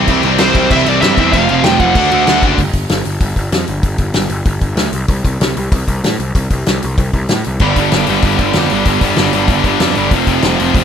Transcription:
0.08 picked electric bass C2, overdriven electric guitar C3 E3 G3 C4 E4, kick, crash
0.23 picked electric bass C2, overdriven electric guitar C3 E3 G3 C4 E4, crash
0.38 picked electric bass C2, overdriven electric guitar C3 E3 G3 C4 E4, lead electric guitar C5, snare, crash
0.55 picked electric bass C2, overdriven electric guitar C3 E3 G3 C4 E4, kick, crash
0.71 picked electric bass C2, overdriven electric guitar C3 E3 G3 C4 E4, lead electric guitar E5, kick, crash
0.86 picked electric bass C2, overdriven electric guitar C3 E3 G3 C4 E4, lead electric guitar D5, crash
1.01 picked electric bass G2, overdriven electric guitar C3 E3 G3 C4 E4, lead electric guitar E5, snare, crash
1.17 picked electric bass E2, overdriven electric guitar C3 E3 G3 C4 E4, kick, crash
1.32 picked electric bass F1, distorted electric guitar F2 C3, overdriven electric guitar F3 A3 C4 F4, lead electric guitar F5, kick, crash
1.48 picked electric bass F1, distorted electric guitar F2 C3, overdriven electric guitar F3 A3 C4 F4, crash
1.63 picked electric bass F1, distorted electric guitar F2 C3, overdriven electric guitar F3 A3 C4 F4, lead electric guitar G5, snare, crash
1.80 picked electric bass F1, distorted electric guitar F2 C3, overdriven electric guitar F3 A3 C4 F4, lead electric guitar F#5, kick, crash
1.95 picked electric bass D2, overdriven electric guitar D3 A3 D4 F#4, kick, crash
2.11 picked electric bass D2, overdriven electric guitar D3 A3 D4 F#4, crash
2.26 picked electric bass D2, overdriven electric guitar D3 A3 D4 F#4, snare, crash
2.42 picked electric bass F#1, overdriven electric guitar D3 A3 D4 F#4, kick, crash
2.58 picked electric bass G1, kick, open hi-hat
2.73 picked electric bass G1, kick, open hi-hat
2.89 picked electric bass G1, snare, open hi-hat
3.05 picked electric bass G1, open hi-hat
3.21 picked electric bass G1, kick, open hi-hat
3.36 picked electric bass G1, kick, open hi-hat
3.52 picked electric bass F2, snare, open hi-hat
3.67 picked electric bass G1, open hi-hat
3.83 picked electric bass G1, kick, open hi-hat
3.98 picked electric bass G1, kick, open hi-hat
4.14 picked electric bass G1, snare, open hi-hat
4.30 picked electric bass G1, open hi-hat
4.45 picked electric bass G1, kick, open hi-hat
4.61 picked electric bass G1, kick, open hi-hat
4.76 picked electric bass D2, snare, open hi-hat
4.92 picked electric bass C2, open hi-hat
5.08 picked electric bass C2, kick, open hi-hat
5.25 picked electric bass C2, kick, open hi-hat
5.40 picked electric bass C2, snare, open hi-hat
5.57 picked electric bass C2, open hi-hat
5.72 picked electric bass C2, kick, open hi-hat
5.88 picked electric bass C2, kick, open hi-hat
6.04 picked electric bass A2, snare, open hi-hat
6.19 picked electric bass C2, open hi-hat
6.35 picked electric bass C2, kick, open hi-hat
6.50 picked electric bass C2, kick, open hi-hat
6.66 picked electric bass C2, snare, open hi-hat
6.82 picked electric bass C2, open hi-hat
6.98 picked electric bass C2, kick, open hi-hat
7.13 picked electric bass C2, kick, open hi-hat
7.29 picked electric bass A2, snare, open hi-hat
7.44 picked electric bass C2, open hi-hat
7.59 picked electric bass G1, overdriven electric guitar G2 D3 G3 B3 D4, kick, crash
7.76 picked electric bass G1, overdriven electric guitar G2 D3 G3 B3 D4, kick, open hi-hat
7.92 picked electric bass G1, overdriven electric guitar G2 D3 G3 B3 D4, snare, open hi-hat
8.07 picked electric bass G1, overdriven electric guitar G2 D3 G3 B3 D4, open hi-hat
8.22 picked electric bass G1, overdriven electric guitar G2 D3 G3 B3 D4, kick, open hi-hat
8.39 picked electric bass G1, overdriven electric guitar G2 D3 G3 B3 D4, kick, open hi-hat
8.53 picked electric bass F2, overdriven electric guitar G2 D3 G3 B3 D4, snare, open hi-hat
8.70 picked electric bass G1, overdriven electric guitar G2 D3 G3 B3 D4, open hi-hat
8.85 picked electric bass G1, overdriven electric guitar G2 D3 G3 B3 D4, kick, open hi-hat
9.01 picked electric bass G1, overdriven electric guitar G2 D3 G3 B3 D4, kick, open hi-hat
9.16 picked electric bass G1, overdriven electric guitar G2 D3 G3 B3 D4, snare, open hi-hat
9.33 picked electric bass G1, overdriven electric guitar G2 D3 G3 B3 D4, open hi-hat
9.48 picked electric bass G1, overdriven electric guitar G2 D3 G3 B3, kick, open hi-hat
9.52 overdriven electric guitar D4
9.64 picked electric bass G1, overdriven electric guitar G2 D3 G3 B3 D4, kick, open hi-hat
9.80 picked electric bass F2, overdriven electric guitar G2 D3 G3 B3 D4, snare, open hi-hat
9.95 picked electric bass G1, overdriven electric guitar G2 D3 G3 B3 D4, open hi-hat
10.11 picked electric bass F1, overdriven electric guitar F2 C3 F3 A3 C4, kick, open hi-hat
10.27 picked electric bass F1, overdriven electric guitar F2 C3 F3 A3 C4, kick, open hi-hat
10.42 picked electric bass F1, overdriven electric guitar F2 C3 F3 A3, snare, open hi-hat
10.46 overdriven electric guitar C4
10.60 picked electric bass F1, overdriven electric guitar F2 C3 F3 A3 C4, open hi-hat
10.75 picked electric bass F1, overdriven electric guitar F2 C3 F3 A3 C4, kick, open hi-hat

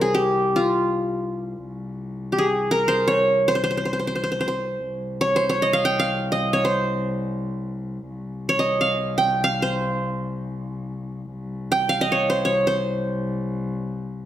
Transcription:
Already playing: cello C2, qanun A#4 C5
0.01 qanun G#4
0.15 qanun G4
0.56 qanun F4
1.68 cello C2
2.32 qanun G4
2.38 qanun G#4
2.71 qanun A#4
2.88 qanun C5
3.08 qanun C#5
3.48 qanun C5
3.55 qanun C5
3.64 qanun C5
3.71 qanun C5
3.77 qanun C5
3.85 qanun C5
3.93 qanun C5
3.99 qanun C5
4.07 qanun C5
4.15 qanun C5
4.24 qanun C5
4.32 qanun C5
4.41 qanun C5
4.48 qanun C5
4.88 cello C2
5.21 qanun C#5
5.36 qanun C5
5.49 qanun C#5
5.62 qanun D#5
5.73 qanun F5
5.85 qanun G5
5.99 qanun F5
6.32 qanun D#5
6.53 qanun C#5
6.65 qanun C5
8.10 cello C2
8.49 qanun C#5
8.59 qanun D#5
8.81 qanun F5
9.18 qanun G5
9.44 qanun F5
9.62 qanun C5
11.33 cello C2
11.72 qanun G5
11.89 qanun F5
12.01 qanun D#5
12.12 qanun C#5
12.30 qanun C5
12.45 qanun C#5
12.67 qanun C5

